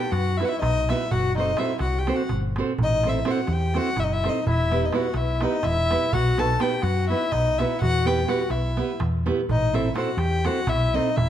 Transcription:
Already playing: G4 G5
0.01 darbuka tek
0.10 F#2 F#4 F#5, darbuka tek
0.26 darbuka tek
0.37 B3 D#4 E4 E5, darbuka tek
0.41 F#4 B4 F#5
0.46 F#4 E5
0.50 E4
0.60 B1 D#4 D#5, darbuka tek, darbuka dum
0.76 darbuka tek
0.88 B3 D#4 E4 F#4 B4 E5, darbuka tek
1.01 darbuka tek
1.11 F#1 F#4 F#5, darbuka dum
1.24 darbuka tek
1.35 C4 D#4 F#4 A4 D#5, darbuka tek
1.39 C5
1.47 darbuka tek
1.57 C4 E4 F#4 A4 C5 E5, darbuka tek
1.69 darbuka tek
1.79 C2 F#4 F#5, darbuka tek
1.93 darbuka tek
1.99 G4 G5
2.07 C4 F#4 A4 C5, darbuka tek
2.14 F#4 F#5
2.19 darbuka tek
2.29 G1, darbuka tek, darbuka dum
2.42 darbuka tek
2.56 C4 F#4 A4 C5, darbuka tek
2.67 darbuka tek
2.78 A1 D#4, darbuka dum
2.83 D#5
3.03 C4 E4 A4 C5, darbuka tek
3.08 E4 E5
3.14 darbuka tek
3.25 C4 E4 F#4 A4 C5, darbuka tek
3.31 F#5
3.47 E2 G4, darbuka tek
3.53 G5
3.60 darbuka tek
3.74 C4 E4 F#4 A4 C5 F#5, darbuka tek
3.96 F#1 E4 E5, darbuka tek, darbuka dum
4.03 D#4 D#5
4.10 E4 E5, darbuka tek
4.24 C4 D#4 E4 A4 C5, darbuka tek
4.29 D#5
4.35 darbuka tek
4.46 E1 E4 E5, darbuka dum
4.71 B3 E4 G4 B4, darbuka tek
4.82 D#4 D#5, darbuka tek
4.93 B3 E4 F#4 G4 B4 F#5, darbuka tek
5.04 darbuka tek
5.14 B1 E4 E5, darbuka tek
5.28 darbuka tek
5.40 B3 D#4 E4 G4 B4 D#5, darbuka tek
5.63 E1 E4 E5, darbuka tek, darbuka dum
5.76 darbuka tek
5.90 B3 E4 G4 B4, darbuka tek
6.02 darbuka tek
6.13 B1 F#4 F#5, darbuka dum
6.38 B3 D#4 F#4 A4 B4 A5, darbuka tek
6.48 darbuka tek
6.60 B3 D#4 F#4 G4 B4 G5, darbuka tek
6.71 darbuka tek
6.82 F#2 F#4 F#5, darbuka tek
6.95 darbuka tek
7.09 B3 D#4 E4 F#4 B4 E5
7.32 B1 D#4 D#5, darbuka tek, darbuka dum
7.58 B3 D#4 E4 F#4 B4 E5, darbuka tek
7.71 darbuka tek
7.81 E2 F#4 F#5, darbuka dum
7.95 darbuka tek
8.05 B3 E4 G4 B4 G5, darbuka tek
8.27 B3 E4 F#4 G4 B4 F#5, darbuka tek
8.50 B1 E4 E5, darbuka tek
8.64 darbuka tek
8.77 B3 E4 G4 B4, darbuka tek
9.00 E2, darbuka tek, darbuka dum
9.14 darbuka tek
9.26 B3 E4 G4 B4, darbuka tek
9.39 darbuka tek
9.49 A1 D#4 D#5, darbuka dum
9.73 C4 E4 A4 C5 E5, darbuka tek
9.85 darbuka tek
9.95 C4 E4 F#4 A4 C5 F#5, darbuka tek
10.06 darbuka tek
10.17 E2 G4 G5, darbuka tek
10.32 darbuka tek
10.44 C4 E4 F#4 A4 C5 F#5, darbuka tek
10.67 B1 E4 E5, darbuka tek, darbuka dum
10.94 C4 D#4 E4 A4 C5 D#5
11.06 darbuka tek
11.16 E1 E4 E5, darbuka dum

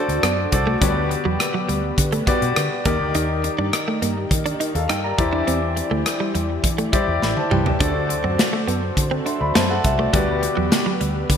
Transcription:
Already playing: D3 D4 F#4 A4 C5 D5
0.09 D2, closed hi-hat
0.23 F#2 B3, cross-stick, closed hi-hat
0.51 C2 F#4 A4 C5 D5, muted clean electric guitar stroke, kick, closed hi-hat
0.67 A3
0.81 D2 D3 G3 B3 F#4 G4 B4 C#5, kick, closed hi-hat
0.88 D5
1.11 muted clean electric guitar stroke, closed hi-hat
1.25 E2 F#3
1.40 muted clean electric guitar stroke, cross-stick, closed hi-hat
1.54 F#3
1.69 D2 G3, closed hi-hat
1.98 D3, muted clean electric guitar stroke, kick, closed hi-hat
2.12 A3, closed hi-hat
2.27 B3 F#4 G4 B4 D5, kick, closed hi-hat
2.42 B2, closed hi-hat
2.56 D3, cross-stick, closed hi-hat
2.85 D#2 D#3 A#3 D#4 G4 A#4 D5 D#5, kick, closed hi-hat
3.00 D2
3.15 D#2 D#4, closed hi-hat
3.44 muted clean electric guitar stroke, closed hi-hat
3.59 G2 D4
3.73 muted clean electric guitar stroke, cross-stick, closed hi-hat
3.88 A3
4.02 G2 A#3, closed hi-hat
4.31 D#3, muted clean electric guitar stroke, kick, closed hi-hat
4.46 D4, closed hi-hat
4.60 D#4, closed hi-hat
4.75 D#2 A4 F5, closed hi-hat
4.89 G2 D#4 A#4 G5, cross-stick, closed hi-hat
5.04 D5 A#5
5.18 E2 E3 E4 G4 C5 D5, muted clean electric guitar stroke, kick, closed hi-hat
5.33 D4
5.47 E2 C4, closed hi-hat
5.76 muted clean electric guitar stroke, closed hi-hat
5.91 D2 A3
6.06 muted clean electric guitar stroke, cross-stick, closed hi-hat
6.20 G3
6.35 E2 G3, closed hi-hat
6.64 E3, muted clean electric guitar stroke, kick, closed hi-hat
6.78 A3, closed hi-hat
6.92 G3 E4 G4 C5 D5, kick, closed hi-hat
7.08 E2
7.22 A1 D5 B5, snare
7.37 C5 A5, high tom
7.51 C2 G3 B4 G5, mid tom
7.66 G4 E5, floor tom
7.80 D2 D3 D4 F#4 A4 C5 D5, kick, closed hi-hat
8.09 muted clean electric guitar stroke, closed hi-hat
8.24 F#2 C4
8.38 muted clean electric guitar stroke, snare, closed hi-hat
8.53 A3
8.68 F#2 B3, closed hi-hat
8.97 D3, muted clean electric guitar stroke, kick, closed hi-hat
9.11 C4
9.26 D4 E5 C6, closed hi-hat
9.41 D2 D5 B5
9.55 F#2 B3 C5 A5, snare, closed hi-hat
9.70 A4 F#5
9.84 C2 E5, muted clean electric guitar stroke, kick, closed hi-hat
9.99 A3 F#4 D5
10.13 D2 D3 G3 B3 F#4 G4 B4 D5, kick, closed hi-hat
10.43 muted clean electric guitar stroke, closed hi-hat
10.57 E2 F#3
10.72 muted clean electric guitar stroke, snare, closed hi-hat
10.86 F#3
11.01 D2 G3, closed hi-hat
11.30 D3, muted clean electric guitar stroke, kick, closed hi-hat

